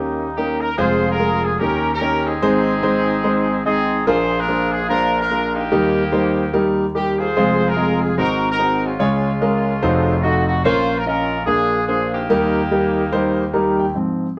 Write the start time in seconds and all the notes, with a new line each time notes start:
Already playing: D#2 D#3 G3 A#3 C#4 D#4 G4
0.37 A#3 C#4 D#4 G4 A#4
0.61 A#4
0.77 F1 F2 G#3 C4 F4 G#4 C5
1.10 F4 A#4
1.19 G#3 C4 F4 G#4 A#4
1.44 G#4
1.59 D#2 D#3 A#3 C#4 D#4 G4 A#4
1.93 C#4 G4 A#4
2.01 A#3 C#4 D#4 G4 C#5
2.26 C4 D#4 G#4
2.42 G#1 G#2 G#3 C4 D#4 G#4 C5
2.83 G#3 C4 D#4 G#4 C5
3.24 G#3 C4 D#4 G#4 C5
3.65 G#3 C4 D#4 G#4 D#5
4.06 A#1 A#2 A#3 D4 F4 G#4 A#4 C5
4.39 D4 F4 A#4
4.48 A#3 D4 F4 G#4 C5
4.72 G#4
4.88 A#3 D4 F4 G#4 A#4 C5
5.21 D4 F4 A#4
5.30 A#3 D4 F4 G#4 A#4
5.55 A#3 D#4 G4
5.72 D#2 D#3 G3 A#3 D#4 G4 A#4
6.12 G3 A#3 D#4 G4 C5
6.53 G3 A#3 D#4 G4 A#4
6.95 G3 A#3 D#4 G4 A#4
7.19 F4 G#4 C5
7.37 F1 F2 G#3 C4 F4 G#4 C5
7.69 F4 A#4
7.76 G#3 C4 F4 G#4 D#5
8.01 G#4
8.17 G#1 G#2 C4 D#4 F#4 G#4 A#4 C5
8.52 D#4 F#4 A#4
8.59 C4 D#4 F#4 G#4 C5
8.85 G#3 C#4 F4
9.00 C#2 C#3 G#3 C#4 F4 G#4 C#5
9.41 G#3 C#4 F4 G#4 A#4
9.83 F1 F2 D#4 F4 F#4 A4 C5
10.23 D#4 F4 F#4 A4 D#5
10.48 F#4
10.64 A#1 A#2 A#3 C#4 F4 A#4 C5 C#5
10.98 A#4
11.06 A#3 C#4 F4 A#4 D#5
11.46 A#1 A#2 A#3 D4 F4 G#4 A#4
11.87 A#3 D4 F4 G#4 C5
12.13 A#3 D#4 G4
12.30 D#2 D#3 G3 A#3 D#4 G4 A#4
12.71 G3 A#3 D#4 G4 A#4
13.12 G3 A#3 D#4 G4 C5
13.54 G3 A#3 D#4 G4 A#4 A#5
13.79 G5
13.95 G#2 F3 C4